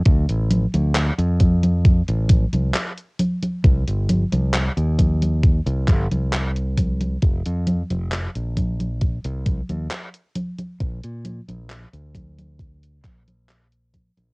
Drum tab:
HH |xxxxxxxxxxxxxxxx|xxxxxxxxxxxxxxxx|xxxxxxxxxxxxxxxx|xxxxxxxxxxxxxxxx|
CP |----x-------x---|----x-----x-x---|----x-------x---|----x-----x-x---|
CG |o-ooo-ooo-ooo-oo|o-ooo-ooo-ooo-oo|o-ooo-ooo-ooo-oo|o-ooo-ooo-ooo-oo|
BD |o-----o-o-o-----|o-----o-o-o---o-|o-----o-o-o-----|o-----o-o-o---o-|